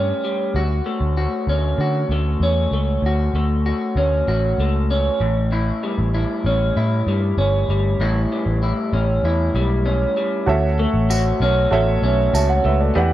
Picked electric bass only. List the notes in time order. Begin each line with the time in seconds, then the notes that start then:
Already playing: G2
0.55 D2
1.01 D2
1.47 D2
1.78 D3
2.09 D2
2.40 E2
2.71 C#2
3.02 D2
3.34 D2
3.96 D2
4.28 A1
4.58 C#2
5.20 A1
5.98 A1
6.44 A1
6.77 A2
7.07 G2
7.38 G1
7.69 G1
7.99 A1
8.46 A1
8.93 A1
9.23 E2
9.54 B1
10.47 D2
10.94 A1
11.40 B1
11.72 A1
12.02 B1
12.34 C#2
12.65 C#2
12.96 E2